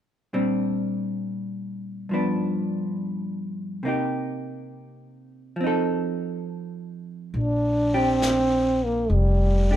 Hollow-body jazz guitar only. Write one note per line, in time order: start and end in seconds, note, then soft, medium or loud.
0.33 2.09 A#2 soft
0.33 2.09 G3 soft
0.33 2.09 C4 soft
0.33 2.10 D4 soft
2.09 3.84 G2 soft
2.09 3.85 F3 soft
2.13 3.85 B3 soft
2.13 3.86 D4 soft
3.83 5.58 C3 soft
3.83 5.59 A#3 soft
3.83 5.59 D#4 soft
3.88 5.60 G4 soft
5.56 7.33 F3 soft
5.61 7.35 C4 soft
5.61 7.37 D#4 soft
5.67 7.38 A4 medium
7.94 9.70 D4 soft
7.94 9.71 G4 medium
9.71 9.77 D4 soft
9.71 9.77 G4 soft